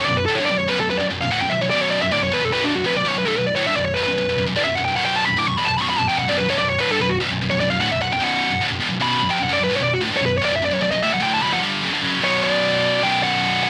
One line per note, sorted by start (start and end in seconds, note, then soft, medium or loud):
0.05 0.25 B1 medium
0.05 0.25 F#2 medium
0.05 0.17 D5 medium
0.17 0.25 B4 medium
0.26 0.39 D2 medium
0.26 0.39 A2 medium
0.26 0.38 A4 medium
0.35 0.45 C#5 medium
0.40 0.50 G2 medium
0.40 0.50 D3 medium
0.46 0.59 D5 medium
0.50 0.67 B1 medium
0.50 0.67 F#2 medium
0.59 0.69 C#5 medium
0.68 0.79 B1 medium
0.68 0.79 F#2 medium
0.68 0.80 B4 medium
0.80 0.89 B1 medium
0.80 0.90 F#2 medium
0.80 0.90 A4 medium
0.90 0.99 B1 medium
0.90 0.99 F#2 medium
0.90 1.01 B4 medium
0.98 1.09 B1 medium
0.98 1.10 F#2 medium
0.98 1.05 D5 medium
1.10 1.21 B1 medium
1.10 1.22 F#2 medium
1.21 1.30 B1 medium
1.21 1.31 F#2 medium
1.21 1.31 F5 medium
1.31 1.40 D2 medium
1.31 1.41 A2 medium
1.31 1.41 F#5 medium
1.41 1.49 B1 medium
1.41 1.50 F#2 medium
1.41 1.51 G5 medium
1.50 1.60 B1 medium
1.50 1.60 F#2 medium
1.50 1.61 E5 medium
1.61 1.70 B1 medium
1.61 1.70 F#2 medium
1.61 1.70 C#5 medium
1.70 2.00 B1 medium
1.70 2.01 F#2 loud
1.70 2.02 B2 loud
1.70 1.81 D5 medium
1.81 1.90 C#5 medium
1.91 2.01 D5 medium
2.01 2.11 B1 medium
2.01 2.12 F#2 medium
2.01 2.12 E5 loud
2.11 2.20 D2 medium
2.11 2.21 A2 medium
2.11 2.23 D5 medium
2.21 2.31 B1 medium
2.21 2.33 F#2 medium
2.21 2.33 C#5 medium
2.31 2.42 E2 medium
2.31 2.42 B2 medium
2.31 2.45 B4 medium
2.42 2.51 B1 medium
2.42 2.52 F#2 medium
2.42 2.53 A4 medium
2.52 2.73 B1 medium
2.52 2.73 F#2 medium
2.52 2.74 B2 medium
2.52 2.63 B4 medium
2.64 2.74 D4 medium
2.75 2.84 B1 medium
2.75 2.85 F#2 medium
2.75 2.85 F#4 medium
2.84 2.94 F2 medium
2.84 2.94 C3 loud
2.84 2.97 B4 medium
2.95 3.04 B1 medium
2.95 3.05 F#2 medium
2.95 3.08 D5 medium
3.05 3.14 B1 loud
3.05 3.15 F#2 loud
3.05 3.16 C#5 medium
3.16 3.25 B1 medium
3.16 3.26 F#2 medium
3.16 3.28 B4 medium
3.25 3.35 C2 medium
3.25 3.35 G2 loud
3.25 3.38 A4 medium
3.36 3.52 B1 medium
3.36 3.52 F#2 medium
3.36 3.47 B4 medium
3.46 3.55 D5 medium
3.55 3.65 D2 medium
3.55 3.66 A2 loud
3.55 3.67 C#5 medium
3.67 3.76 G2 medium
3.67 3.76 D3 medium
3.67 3.76 E5 medium
3.76 3.92 B1 medium
3.76 3.93 F#2 medium
3.76 3.85 D5 medium
3.85 3.95 C#5 medium
3.94 4.06 B1 medium
3.94 4.06 F#2 medium
3.94 4.02 B4 medium
4.03 4.17 B1 medium
4.03 4.17 F#2 medium
4.03 4.42 B4 medium
4.18 4.27 B1 medium
4.18 4.27 F#2 medium
4.29 4.37 B1 medium
4.29 4.37 F#2 medium
4.38 4.45 B1 medium
4.38 4.46 F#2 medium
4.47 4.55 B1 medium
4.47 4.57 F#2 medium
4.56 4.65 D2 loud
4.56 4.66 A2 loud
4.56 4.64 D5 medium
4.64 4.76 B1 medium
4.64 4.77 F#2 medium
4.64 4.75 E5 medium
4.75 4.87 B1 medium
4.75 4.86 F#2 medium
4.75 4.84 F#5 loud
4.85 4.95 B1 medium
4.85 4.96 F#2 medium
4.85 4.96 G5 medium
4.96 5.26 B1 medium
4.96 5.26 F#2 loud
4.96 5.27 B2 medium
4.96 5.05 F#5 medium
5.05 5.16 G5 medium
5.16 5.25 A5 medium
5.25 5.36 B1 medium
5.25 5.37 F#2 medium
5.25 5.38 B5 medium
5.37 5.46 D2 medium
5.37 5.47 A2 medium
5.37 5.47 D6 medium
5.47 5.57 B1 medium
5.47 5.58 F#2 medium
5.47 5.57 C#6 medium
5.57 5.67 E2 medium
5.57 5.68 B2 medium
5.57 5.67 B5 medium
5.65 5.77 B1 medium
5.65 5.78 F#2 medium
5.65 5.76 A5 medium
5.77 5.97 B1 medium
5.77 5.97 F#2 medium
5.77 5.99 B2 medium
5.77 5.81 B5 medium
5.82 5.89 C#6 loud
5.90 5.99 B5 medium
5.98 6.08 B1 medium
5.98 6.08 F#2 medium
5.98 6.08 A5 medium
6.08 6.18 F2 medium
6.08 6.18 C3 loud
6.08 6.18 G5 medium
6.18 6.27 B1 medium
6.18 6.28 F#2 medium
6.18 6.28 F#5 medium
6.28 6.38 B1 medium
6.28 6.39 F#2 medium
6.28 6.38 D5 medium
6.38 6.48 B1 medium
6.38 6.49 F#2 medium
6.38 6.48 B4 medium
6.49 6.58 C2 medium
6.49 6.59 G2 medium
6.49 6.58 C#5 medium
6.58 6.76 B1 medium
6.58 6.76 F#2 medium
6.58 6.68 D5 medium
6.69 6.79 C#5 medium
6.79 6.88 D2 medium
6.79 6.89 A2 loud
6.79 6.90 B4 medium
6.91 6.99 G2 medium
6.91 7.00 D3 medium
6.91 7.01 A4 medium
7.01 7.16 B1 medium
7.01 7.16 F#2 medium
7.01 7.10 B4 medium
7.10 7.16 F#4 medium
7.20 7.29 B1 medium
7.20 7.30 F#2 loud
7.31 7.40 B1 medium
7.31 7.41 F#2 medium
7.41 7.49 B1 medium
7.41 7.50 F#2 medium
7.50 7.59 B1 medium
7.50 7.60 F#2 medium
7.50 7.60 C#5 medium
7.60 7.69 B1 medium
7.60 7.70 F#2 medium
7.60 7.70 D5 medium
7.70 7.80 B1 medium
7.70 7.81 F#2 medium
7.70 7.80 F5 medium
7.79 7.90 D2 medium
7.79 7.90 A2 loud
7.79 7.91 F#5 loud
7.91 8.00 B1 medium
7.91 8.00 F#2 medium
7.91 8.01 E5 medium
8.01 8.11 B1 medium
8.01 8.11 F#2 medium
8.01 8.11 F#5 loud
8.12 8.19 B1 medium
8.12 8.20 F#2 medium
8.12 8.24 G5 loud
8.20 8.49 B1 medium
8.20 8.49 F#2 loud
8.20 8.50 B2 medium
8.24 8.63 F#5 medium
8.50 8.60 B1 medium
8.50 8.61 F#2 medium
8.61 8.69 D2 medium
8.61 8.71 A2 loud
8.70 8.80 B1 medium
8.70 8.80 F#2 medium
8.80 8.89 E2 medium
8.80 8.90 B2 loud
8.90 8.99 B1 medium
8.90 8.99 F#2 medium
9.00 9.20 B1 loud
9.00 9.20 F#2 medium
9.00 9.21 B2 loud
9.00 9.30 B5 medium
9.21 9.30 B1 medium
9.21 9.31 F#2 medium
9.30 9.40 F2 medium
9.30 9.40 C3 loud
9.30 9.41 G5 medium
9.40 9.48 B1 medium
9.40 9.49 F#2 medium
9.40 9.52 F#5 medium
9.49 9.59 B1 loud
9.49 9.59 F#2 loud
9.49 9.62 D5 medium
9.60 9.70 B1 medium
9.60 9.70 F#2 medium
9.60 9.73 B4 loud
9.70 9.80 C2 medium
9.70 9.80 G2 medium
9.76 9.83 C#5 medium
9.81 9.97 B1 medium
9.81 9.97 F#2 medium
9.81 9.92 D5 loud
9.93 9.99 F#4 medium
10.01 10.10 D2 loud
10.01 10.12 A2 medium
10.11 10.21 G2 medium
10.11 10.21 D3 loud
10.17 10.24 C#5 medium
10.21 10.38 B1 medium
10.21 10.38 F#2 medium
10.26 10.34 B4 medium
10.37 10.44 C#5 medium
10.42 10.51 B1 medium
10.42 10.52 F#2 loud
10.42 10.53 D5 medium
10.52 10.61 B1 medium
10.52 10.61 F#2 medium
10.52 10.64 E5 loud
10.62 10.70 B1 medium
10.62 10.70 F#2 medium
10.62 10.74 D5 medium
10.71 10.79 B1 medium
10.71 10.79 F#2 medium
10.71 10.82 C#5 medium
10.81 10.91 B1 medium
10.81 10.91 F#2 medium
10.81 10.91 D5 medium
10.91 11.02 B1 medium
10.91 11.02 F#2 medium
10.91 11.01 D#5 medium
11.02 11.12 D2 medium
11.02 11.12 A2 loud
11.02 11.12 E5 medium
11.12 11.19 B1 medium
11.12 11.21 F#2 medium
11.12 11.22 F#5 medium
11.20 11.41 D2 medium
11.20 11.41 A2 medium
11.20 11.42 D3 medium
11.20 11.32 G5 medium
11.34 11.42 A5 medium
11.42 11.49 B1 loud
11.42 11.50 F#2 loud
11.42 11.52 B5 loud
11.49 11.60 F2 loud
11.49 11.61 C3 loud
11.49 11.59 F#5 medium
11.61 11.81 G2 medium
11.61 11.82 D3 loud
11.61 11.82 G3 loud
11.82 11.91 F#2 medium
11.82 11.92 C#3 loud
11.91 12.01 G2 medium
11.91 12.02 D3 medium
12.02 12.20 F#2 medium
12.02 12.22 C#3 loud
12.02 12.23 F#3 medium
12.20 13.02 B1 medium
12.20 13.02 F#2 medium
12.20 12.43 C#5 medium
12.25 13.05 B2 medium
12.44 13.05 D5 medium
13.02 13.70 B1 medium
13.02 13.70 F#2 loud
13.02 13.70 B2 medium
13.02 13.23 G5 loud
13.23 13.62 F#5 loud
13.63 13.70 F#5 loud